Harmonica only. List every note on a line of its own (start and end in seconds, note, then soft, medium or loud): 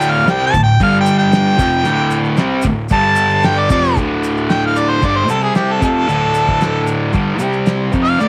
0.00 0.12 G5 medium
0.11 0.28 F5 loud
0.30 0.46 G5 medium
0.46 0.63 A5 loud
0.63 0.80 G5 loud
0.83 0.99 F5 loud
1.01 1.16 G5 loud
1.19 2.19 G5 loud
2.93 3.47 A5 loud
3.46 3.61 G5 loud
3.60 3.71 D5 medium
3.71 3.97 D5 loud
4.50 4.62 G5 medium
4.66 4.80 F5 medium
4.78 4.91 D5 medium
4.90 5.07 C5 medium
5.05 5.18 D5 medium
5.17 5.29 C5 medium
5.31 5.42 A4 medium
5.44 5.55 G#4 medium
5.56 5.74 G4 medium
5.73 5.83 A4 medium
5.84 6.86 A4 loud
8.04 8.23 F5 loud
8.21 8.28 D5 medium